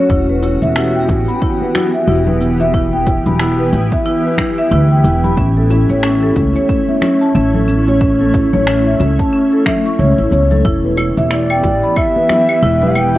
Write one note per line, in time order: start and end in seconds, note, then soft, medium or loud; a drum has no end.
0.00 2.69 F#4 medium
0.10 0.57 E1 medium
0.10 5.34 E3 medium
0.10 5.33 B3 medium
0.10 0.27 E4 medium
0.10 5.33 G4 medium
0.10 kick loud
0.10 shaker soft
0.29 0.37 B4 medium
0.29 high conga soft
0.43 0.54 E4 medium
0.43 high bongo medium
0.43 shaker medium
0.62 1.05 E1 medium
0.62 0.74 E5 medium
0.62 shaker soft
0.76 0.93 E4 medium
0.76 finger snap medium
0.76 shaker soft
0.95 1.07 G5 medium
1.08 1.25 A1 medium
1.08 1.27 E4 medium
1.08 kick loud
1.08 high bongo medium
1.08 shaker medium
1.28 1.41 B5 medium
1.28 shaker soft
1.42 1.53 E4 medium
1.42 kick medium
1.42 shaker soft
1.61 1.74 B4 medium
1.61 high conga medium
1.75 1.93 E4 medium
1.75 finger snap medium
1.75 high bongo medium
1.75 low conga medium
1.75 shaker medium
1.94 2.07 E5 medium
1.94 shaker soft
2.07 3.21 E1 medium
2.07 2.25 E4 medium
2.07 shaker soft
2.27 2.35 B4 medium
2.27 low conga medium
2.41 2.52 E4 medium
2.41 high conga medium
2.41 shaker medium
2.60 2.72 E5 medium
2.60 high bongo medium
2.60 shaker soft
2.74 10.61 E4 medium
2.74 2.91 E4 medium
2.74 kick loud
2.74 shaker soft
2.93 3.05 G5 medium
2.93 high conga medium
3.07 3.25 E4 medium
3.07 kick loud
3.07 high bongo medium
3.07 shaker medium
3.26 3.69 E1 medium
3.26 3.39 B5 medium
3.26 high conga soft
3.26 low conga medium
3.26 shaker soft
3.39 3.51 E4 medium
3.39 finger snap medium
3.39 shaker soft
3.59 3.72 B4 medium
3.73 3.89 A1 medium
3.73 3.91 E4 medium
3.73 high bongo medium
3.73 shaker medium
3.92 4.05 E5 medium
3.92 kick loud
3.92 shaker soft
4.05 4.23 E4 loud
4.05 shaker soft
4.25 4.33 B4 medium
4.38 4.50 E4 medium
4.38 finger snap medium
4.38 kick medium
4.38 high conga soft
4.38 low conga medium
4.38 shaker medium
4.58 4.70 E5 medium
4.58 shaker soft
4.71 5.06 D2 medium
4.71 4.89 E4 medium
4.71 shaker soft
4.91 5.03 G5 medium
5.04 5.33 E1 medium
5.04 5.23 E4 medium
5.04 high conga medium
5.04 shaker medium
5.24 5.37 B5 medium
5.24 low conga medium
5.24 shaker soft
5.37 5.85 A1 loud
5.37 10.61 A3 medium
5.37 10.61 C#4 medium
5.37 5.49 C#4 medium
5.37 kick loud
5.37 shaker soft
5.57 5.70 A4 medium
5.57 high conga medium
5.70 5.89 C#4 medium
5.70 high bongo medium
5.70 shaker medium
5.89 6.33 A1 medium
5.89 6.03 C#5 medium
5.89 shaker soft
6.03 6.21 C#4 loud
6.03 finger snap medium
6.03 shaker soft
6.23 6.31 A4 medium
6.36 6.52 C#2 medium
6.36 kick medium
6.36 high bongo medium
6.36 shaker medium
6.56 6.68 C#5 loud
6.56 shaker soft
6.69 6.87 C#4 medium
6.69 kick loud
6.69 shaker soft
6.89 7.01 E5 medium
6.89 high conga medium
7.02 7.20 C#4 medium
7.02 finger snap medium
7.02 high bongo medium
7.02 low conga medium
7.02 shaker medium
7.21 7.34 A5 medium
7.21 shaker soft
7.35 8.48 A1 loud
7.35 7.46 C#4 medium
7.35 shaker soft
7.54 7.67 A4 medium
7.54 low conga medium
7.68 7.86 C#4 medium
7.68 high conga medium
7.68 shaker medium
7.88 8.00 C#5 medium
7.88 high bongo medium
7.88 shaker soft
8.01 8.19 C#4 medium
8.01 kick loud
8.01 shaker soft
8.20 8.28 A4 medium
8.20 high conga medium
8.34 8.45 C#4 medium
8.34 kick loud
8.34 high bongo medium
8.34 shaker medium
8.52 8.96 A1 medium
8.52 8.66 C#5 medium
8.52 high conga soft
8.52 low conga medium
8.52 shaker soft
8.67 8.84 C#4 medium
8.67 finger snap medium
8.67 shaker soft
8.86 8.99 E5 medium
9.00 9.16 C#2 medium
9.00 9.18 C#4 medium
9.00 high bongo medium
9.00 shaker medium
9.19 9.32 A5 medium
9.19 kick medium
9.19 shaker soft
9.33 9.44 C#4 medium
9.33 shaker soft
9.52 9.65 A4 medium
9.66 9.77 E5 loud
9.66 finger snap medium
9.66 kick medium
9.66 low conga medium
9.66 shaker medium
9.85 9.98 C#6 medium
9.85 shaker soft
9.99 10.15 C#2 medium
9.99 10.17 C#5 medium
9.99 shaker soft
10.18 10.30 A1 medium
10.18 10.31 E4 medium
10.31 10.60 C#2 medium
10.31 10.49 C#5 medium
10.31 high conga medium
10.31 shaker medium
10.51 10.63 A4 medium
10.51 low conga medium
10.51 shaker soft
10.64 11.12 E1 medium
10.64 13.18 E3 medium
10.64 13.18 B3 medium
10.64 10.82 E4 medium
10.64 13.18 G4 medium
10.64 kick loud
10.64 shaker soft
10.84 10.92 B4 medium
10.84 high conga medium
10.97 11.09 E4 medium
10.97 high bongo medium
10.97 claves medium
10.97 shaker medium
11.17 11.60 E1 medium
11.17 11.30 E5 medium
11.17 shaker soft
11.31 11.48 E4 medium
11.31 11.98 D5 medium
11.31 finger snap medium
11.31 shaker soft
11.50 11.63 G5 medium
11.50 claves medium
11.64 11.80 A1 medium
11.64 11.82 E4 medium
11.64 kick medium
11.64 high bongo medium
11.64 shaker medium
11.83 11.96 B5 medium
11.83 shaker soft
11.96 12.08 E4 medium
11.96 12.97 E5 medium
11.96 kick loud
11.96 claves medium
11.96 shaker soft
12.16 12.29 B4 medium
12.16 high conga medium
12.29 12.48 E4 medium
12.29 finger snap medium
12.29 high bongo medium
12.29 low conga medium
12.29 shaker medium
12.49 12.62 E5 medium
12.49 claves medium
12.49 shaker soft
12.62 13.18 E1 medium
12.62 12.80 E4 medium
12.62 shaker soft
12.82 12.90 B4 medium
12.82 low conga medium
12.95 13.07 E4 medium
12.95 13.18 G5 loud
12.95 high conga medium
12.95 claves medium
12.95 shaker medium
13.15 13.18 E5 medium
13.15 shaker soft